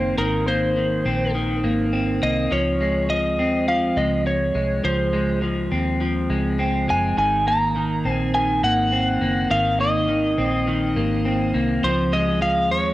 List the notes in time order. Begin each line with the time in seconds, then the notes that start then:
Already playing: F#1 D#3 A#3 C4 C5
0.18 G#1 D#3 A#4
0.48 A#3 C5
0.77 D#3
1.05 A#1 C4
1.35 D#3
1.64 G#1 A#3
1.93 C4
2.22 C2 A#3 D#5
2.51 C#2 F3 C#5
2.81 G#3
3.10 F3 D#5
3.38 D#2 C4
3.68 F3 F5
3.97 C#2 G#3 D#5
4.27 C#5
4.55 C2 G#3
4.84 C#2 F3 C5
5.13 G#3
5.42 F3
5.72 D#2 C4
6.01 F3
6.30 C#2 G#3
6.59 C4
6.88 F#1 G#3 G#5
7.17 G#1 D#3 G#5
7.47 A#3 A#5
7.76 D#3
8.05 A#1 C4
8.12 G#5
8.34 D#3 G#5
8.63 G#1 A#3 F#5
8.92 C4
9.21 F#1 A#3
9.50 G#1 D#3 F5
9.80 A#3 D#5
10.09 D#3
10.38 A#1 C4
10.67 D#3
10.96 G#1 A#3
11.25 C4
11.54 C2 A#3
11.83 C#2 F3 C5
12.13 G#3 D#5
12.42 F3 F5
12.71 D#2 C#5